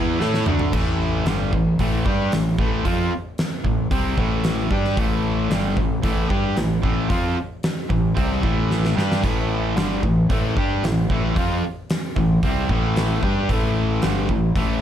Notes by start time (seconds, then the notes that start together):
Already playing: E2 E3 B3 E4
0.20 A2 A3 E4 A4, snare
0.34 snare
0.46 D2 D3 A3 D4, mid tom
0.59 floor tom
0.73 A1 A2 E3 A3, kick, crash
1.26 G1 G2 D3 G3, snare, open hi-hat
1.53 A1 A2 E3, kick
1.79 A1 A2 E3 A3, kick, open hi-hat
2.06 G2 G3 D4 G4, kick
2.32 A1 A2 E3, snare, open hi-hat
2.58 A1 A2 E3 A3, kick
2.85 F2 F3 C4 F4, kick, open hi-hat
3.38 snare, open hi-hat
3.65 A1 A2 E3, kick
3.91 C2 C3 G3 C4, kick, open hi-hat
4.18 A1 A2 E3 A3, kick
4.44 snare, open hi-hat
4.71 G2 G3 D4 G4, kick
4.85 snare
4.97 A1 A2 E3 A3, kick, open hi-hat
5.51 G1 G2 D3 G3, snare, open hi-hat
5.77 A1 A2 E3, kick
6.03 A1 A2 E3 A3, kick, open hi-hat
6.30 G2 G3 D4 G4, kick
6.56 A1 A2 E3, snare, open hi-hat
6.83 A1 A2 E3 A3, kick
7.10 F2 F3 C4 F4, kick, open hi-hat
7.63 snare, open hi-hat
7.90 A1 A2 E3, kick
8.17 C2 C3 G3 C4, kick, open hi-hat
8.43 A1 A2 E3 A3, kick
8.71 snare
8.85 snare
8.97 G2 G3 D4 G4, snare
9.12 snare
9.24 A1 A2 E3 A3, kick, open hi-hat, crash
9.76 G1 G2 D3 G3, snare, open hi-hat
10.03 A1 A2 E3, kick
10.30 A1 A2 E3 A3, kick, open hi-hat
10.57 G2 G3 D4 G4, kick
10.83 A1 A2 E3, snare, open hi-hat
11.10 A1 A2 E3 A3, kick
11.36 F2 F3 C4 F4, kick, open hi-hat
11.90 snare, open hi-hat
12.16 A1 A2 E3, kick
12.43 C2 C3 G3 C4, kick, open hi-hat
12.69 A1 A2 E3 A3, kick
12.96 snare, open hi-hat
13.23 G2 G3 D4 G4, kick
13.49 A1 A2 E3 A3, kick, open hi-hat
14.02 G1 G2 D3 G3, snare, open hi-hat
14.29 A1 A2 E3, kick
14.56 A1 A2 E3 A3, kick, open hi-hat